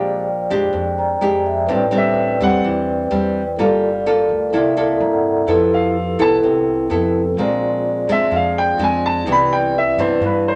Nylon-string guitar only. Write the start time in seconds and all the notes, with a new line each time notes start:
Already playing: A#2 G#3 D4 G4
0.50 G#3 D4 G4
0.73 F2
1.21 G#3 D4 G4
1.68 A2 G3 C4 D4
1.91 G3 C4 D4
2.41 G3 C4 D4
2.64 E3
3.11 G3 C4 D4
3.59 G3 A#3 F4 A4
4.06 A#3 F4 A4
4.53 C3 A#3 E4 A4
4.77 A#3 E4 A4
5.48 F3 B3 E4 A4
6.19 B3 E4 A4
6.43 C3
6.90 B3 E4 A4
7.38 A#2 G#3 C4 D4
8.09 G#3 C4 D4
8.31 F3
8.79 G#3 C4 D4
9.26 C3 E3 B3 D4
9.98 E3 B3 D4
10.22 G2